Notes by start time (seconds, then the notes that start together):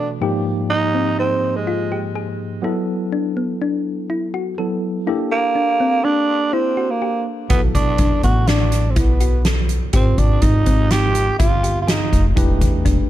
Already playing: B2 E3 A3 D4 F#4 A4
0.21 G#2 F3 A#3 D#4 G4
0.70 D#4
0.94 C4
1.19 C4 D#4
1.56 G#3
1.67 F4
1.92 G4
2.15 G#4
2.62 F#3 B3 E4 A4
3.12 D4
3.37 B3
3.62 D4
4.10 E4
4.34 F#4
4.58 F#3 B3 E4 A4
5.07 A#3 D4 E4 G4 A4
5.31 A#3
5.55 D4
5.80 C4
6.04 D4
6.53 C4 E4
6.77 F#4
6.91 A#3
7.02 G4
7.49 B1 F#3 B3 E4 F#4 A4, kick, closed hi-hat
7.75 B2 D4, kick, closed hi-hat
7.98 B1 D4, kick, closed hi-hat
8.23 A1 B3 F#4, kick, closed hi-hat
8.48 D4, snare, closed hi-hat
8.72 snare, closed hi-hat
8.90 C4
8.96 B1 B3 E4, kick, closed hi-hat
9.21 F#4, closed hi-hat
9.45 A4, snare, closed hi-hat
9.69 closed hi-hat
9.93 G#1 C4 F4 G4 A#4, kick, closed hi-hat
10.18 G#1 D4, kick, closed hi-hat
10.42 G#1 D#4, kick, snare, closed hi-hat
10.66 G#1 C4, kick, closed hi-hat
10.91 D#4 G4, snare, closed hi-hat
11.15 closed hi-hat
11.39 G1 F4, kick, closed hi-hat
11.63 G4, closed hi-hat
11.82 F4
11.87 D#4 G#4, snare, closed hi-hat
12.13 F1, kick, snare, closed hi-hat
12.36 E1 A3 D4 E4 G4 B4, kick, closed hi-hat
12.61 E2, kick, closed hi-hat
12.85 E1 D4, kick, closed hi-hat